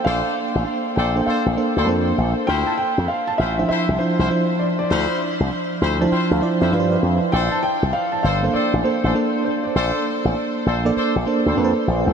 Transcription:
Already playing: fm electric piano A#3 D4 A4 C5
0.04 slap bass A#1, horn section D4 A4 C5, grand piano F5
0.55 slap bass A1
0.96 slap bass A#1, horn section D4 A4 C5, grand piano G5
1.15 fm electric piano A#3 D4 A4 C5
1.26 horn section D4 A4 C5, grand piano F5, muted slap bass stroke
1.46 slap bass A#1
1.57 fm electric piano A#3 D4 A4 C5
1.76 slap bass D2, horn section D4 A4 C5
1.87 slap bass F2, fm electric piano A#3 D4 A4 C5
2.18 slap bass A#1
2.47 slap bass D2, horn section E4 F4 C5, grand piano G5
2.67 grand piano A5
2.78 grand piano G5
2.98 slap bass F2
3.08 grand piano F5
3.27 grand piano A5
3.38 slap bass A1, horn section E4 F4 C5, grand piano E5
3.58 fm electric piano F3 D4 E4 C5
3.69 horn section E4 F4 C5, grand piano E5, muted slap bass stroke
3.89 slap bass C2
3.99 fm electric piano F3 D4 E4 C5, grand piano C5
4.18 slap bass C2, horn section E4 F4 C5
4.30 fm electric piano F3 D4 E4 C5
4.59 grand piano D5
4.79 grand piano D5
4.90 slap bass D2, horn section E4 F4 C5
5.40 slap bass C2
5.81 slap bass D2, horn section E4 F4 C5, fm electric piano C6
6.01 fm electric piano F3 D4 E4 C5 A5
6.11 horn section E4 F4 C5, fm electric piano G5, muted slap bass stroke
6.31 slap bass D2, fm electric piano F5
6.41 fm electric piano F3 D4 E4 D5
6.61 slap bass F2, horn section E4 F4 C5, fm electric piano E5
6.72 slap bass G2, fm electric piano F3 D4 E4 B4 F5
6.80 fm electric piano C5
6.92 fm electric piano D5
7.03 slap bass F2
7.32 slap bass A#1, horn section D4 A4 C5, grand piano G5
7.51 grand piano A5
7.63 grand piano G5
7.83 slap bass C2
7.93 grand piano F5
8.12 grand piano A5
8.23 slap bass G1, horn section D4 A4 C5, grand piano F5
8.43 fm electric piano A#3 D4 A4 C5
8.54 horn section D4 A4 C5, grand piano D5, muted slap bass stroke
8.73 slap bass A1
8.84 fm electric piano A#3 D4 A4 C5, grand piano C5
9.03 slap bass A1, horn section D4 A4 C5
9.15 fm electric piano A#3 D4 A4 C5
9.45 grand piano C5
9.64 grand piano D5
9.75 slap bass A#1, horn section D4 A4 C5
10.25 slap bass A1
10.66 slap bass A#1, horn section D4 A4 C5
10.85 fm electric piano A#3 D4 A4 D5
10.96 horn section D4 A4 C5, muted slap bass stroke
11.16 slap bass A#1
11.27 fm electric piano A#3 D4 A4 C5
11.45 slap bass D2, horn section D4 A4 C5
11.57 slap bass F2, fm electric piano A#3 D4 A4 B4
11.64 fm electric piano C5
11.88 slap bass A#1
12.07 slap bass C2

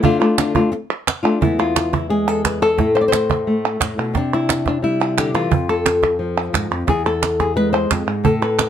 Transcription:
0.03 nylon-string guitar D3 A3 D4 F4, cajon bass
0.20 nylon-string guitar A3 D4 F4
0.38 nylon-string guitar D3 A3 D4 F4, cajon slap, clap
0.55 nylon-string guitar A3 D4 F4, cajon bass
0.72 muted nylon-string guitar stroke
1.07 cajon slap, clap
1.23 nylon-string guitar A3 D4 F4
1.41 nylon-string guitar E2 G#3 B3 E4, cajon bass
1.59 nylon-string guitar F4
1.76 cajon slap, clap
1.93 nylon-string guitar E4, cajon bass
2.10 nylon-string guitar G#3 G#4
2.28 nylon-string guitar A4
2.45 nylon-string guitar B4, cajon bass, cajon slap, clap
2.62 nylon-string guitar A4, clap
2.77 nylon-string guitar A2 A3 E4, cajon bass, cajon slap
2.95 nylon-string guitar C5
3.01 nylon-string guitar D5
3.08 nylon-string guitar C5
3.12 cajon slap, clap
3.30 cajon bass
3.47 nylon-string guitar A3
3.80 nylon-string guitar A2, cajon bass, cajon slap, clap
3.98 nylon-string guitar B2
4.14 nylon-string guitar C3 D4, cajon bass, cajon slap
4.34 nylon-string guitar E4
4.49 cajon slap, clap
4.66 nylon-string guitar D4, cajon bass, cajon slap
4.82 nylon-string guitar G3 E4
5.00 nylon-string guitar F4
5.17 nylon-string guitar D3 G4, cajon slap, clap
5.34 nylon-string guitar E3 F4, cajon slap
5.51 nylon-string guitar F2, cajon bass
5.69 nylon-string guitar A4
5.86 cajon slap, clap
6.03 cajon bass, cajon slap
6.19 nylon-string guitar F3
6.53 nylon-string guitar G#2, cajon bass, cajon slap, clap
6.71 nylon-string guitar F2, cajon slap
6.87 nylon-string guitar E2 G#4, cajon bass, cajon slap
7.06 nylon-string guitar A4
7.23 cajon slap, clap
7.40 nylon-string guitar G#4, cajon bass, cajon slap
7.56 nylon-string guitar G#3 B4
7.73 nylon-string guitar C5
7.90 nylon-string guitar F2, cajon bass, cajon slap, clap
8.07 nylon-string guitar G#2
8.24 nylon-string guitar A2 A4, cajon bass
8.42 nylon-string guitar B4
8.59 cajon slap, clap

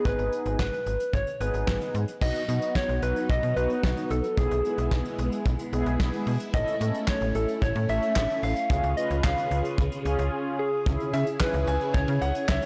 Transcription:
Already playing: analog polysynth B3 D#4 G#4
0.05 fm bass G#1, soft synth lead B4, kick, closed hi-hat
0.19 fm bass G#1, closed hi-hat
0.32 closed hi-hat
0.45 fm bass G#1, closed hi-hat
0.59 fm bass G#1, soft synth lead B4, kick, snare
0.73 closed hi-hat
0.86 fm bass G#1, closed hi-hat
1.00 closed hi-hat
1.13 fm bass G#1, soft synth lead C#5, kick, closed hi-hat
1.27 closed hi-hat
1.40 fm bass G#1, analog polysynth B3 D#4 G#4, soft synth lead B4, closed hi-hat
1.54 fm bass G#1, closed hi-hat
1.67 fm bass G#1, kick, snare
1.81 closed hi-hat
1.94 fm bass G#2, closed hi-hat
2.08 closed hi-hat
2.21 fm bass B1, string machine F#3 B3 D#4, analog polysynth B3 D#4 F#4, soft synth lead D#5, kick, crash
2.35 closed hi-hat
2.48 fm bass B2, analog polysynth B3 D#4 F#4, closed hi-hat
2.62 closed hi-hat
2.75 soft synth lead C#5, kick, snare
2.89 fm bass B1, closed hi-hat
3.02 fm bass B1, soft synth lead B4, closed hi-hat
3.16 closed hi-hat
3.29 fm bass B1, soft synth lead D#5, kick, closed hi-hat
3.43 fm bass B2, closed hi-hat
3.56 fm bass B1, analog polysynth B3 D#4 F#4, soft synth lead B4, closed hi-hat
3.70 closed hi-hat
3.83 fm bass B1, kick, snare
3.97 closed hi-hat
4.10 fm bass B1, soft synth lead A4, closed hi-hat
4.24 closed hi-hat
4.37 fm bass B1, string machine G#3 B3 E4, analog polysynth B3 E4 G#4, soft synth lead G#4, kick, closed hi-hat
4.51 fm bass B1, closed hi-hat
4.65 analog polysynth B3 E4 G#4, closed hi-hat
4.78 fm bass B1, closed hi-hat
4.91 fm bass B1, kick, snare
5.05 closed hi-hat
5.18 fm bass B1, closed hi-hat
5.32 closed hi-hat
5.45 fm bass B1, kick, closed hi-hat
5.59 closed hi-hat
5.73 fm bass B1, analog polysynth B3 E4 G#4, closed hi-hat
5.86 fm bass B1, closed hi-hat
6.00 fm bass B1, kick, snare
6.13 closed hi-hat
6.27 fm bass B2, open hi-hat
6.40 closed hi-hat
6.54 fm bass A1, string machine A3 C#4, analog polysynth C#4 E4 A4, soft synth lead D#5, kick, closed hi-hat
6.67 closed hi-hat
6.81 fm bass A2, analog polysynth C#4 E4 A4, closed hi-hat
6.94 closed hi-hat
7.08 soft synth lead C#5, kick, snare, clap
7.21 fm bass A1, closed hi-hat
7.35 fm bass A1, soft synth lead A4, closed hi-hat
7.48 closed hi-hat
7.62 fm bass A1, soft synth lead C#5, kick, closed hi-hat
7.75 fm bass A2, closed hi-hat
7.89 fm bass A1, analog polysynth C#4 E4 A4, soft synth lead E5, closed hi-hat
8.02 closed hi-hat
8.16 fm bass A1, soft synth lead E5, kick, snare, clap
8.30 closed hi-hat
8.43 fm bass A1, soft synth lead F5, open hi-hat
8.56 closed hi-hat
8.70 fm bass C#2, string machine C#3 F4 G#4, analog polysynth C#4 F4 G#4, kick, closed hi-hat
8.84 fm bass C#2, closed hi-hat
8.97 analog polysynth C#4 F4 B4, soft synth lead D#5, closed hi-hat
9.10 fm bass C#2, closed hi-hat
9.24 fm bass C#2, soft synth lead F5, kick, snare, clap
9.38 closed hi-hat
9.51 fm bass C#2, closed hi-hat
9.65 closed hi-hat
9.78 fm bass C#2, kick, closed hi-hat
9.92 closed hi-hat
10.05 fm bass C#2, analog polysynth C#4 F4 G#4, closed hi-hat
10.19 fm bass C#2, closed hi-hat
10.59 soft synth lead G#4
10.86 fm bass C#2, string machine C#3 C#4 E4 G#4, analog polysynth C#4 E4 G#4, kick, closed hi-hat
11.00 closed hi-hat
11.13 fm bass C#3, grand piano E5, closed hi-hat
11.27 closed hi-hat
11.40 analog polysynth C#4 E4 G#4, soft synth lead B4, kick, snare, clap
11.54 fm bass C#2, closed hi-hat
11.67 fm bass C#2, grand piano G#5, closed hi-hat
11.81 closed hi-hat
11.94 fm bass C#2, soft synth lead C#5, kick, closed hi-hat
12.08 fm bass C#3, closed hi-hat
12.21 fm bass C#2, grand piano F#5, closed hi-hat
12.35 closed hi-hat
12.48 fm bass C#2, soft synth lead C#5, grand piano E5, kick, snare, clap
12.62 closed hi-hat

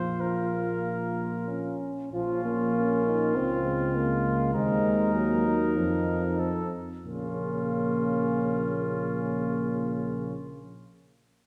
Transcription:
Already playing: tuba A#1, trombone F3, flugelhorn F4, french horn F4, trumpet C5
0.21 trombone F3, trumpet A#4
0.52 trombone A#3
1.48 trombone C#4
2.12 tuba A#1, french horn F3, flugelhorn C#4, trumpet F4, trombone F4
2.45 french horn A#3
2.75 trombone C#4
3.06 trombone D#4
3.35 tuba C#2, french horn C4, flugelhorn F4, trombone F4
3.65 trombone G#3
3.95 french horn A#3
4.54 tuba D#2, french horn G#3, trombone C4, flugelhorn D#4, trumpet A#4
5.14 french horn F#3, trombone A#3
5.45 trombone D#4
5.76 tuba F2, french horn F3
6.39 trombone C4, trumpet A4
7.05 tuba A#1, trombone C#3, french horn A#3, flugelhorn C#4, trumpet F4

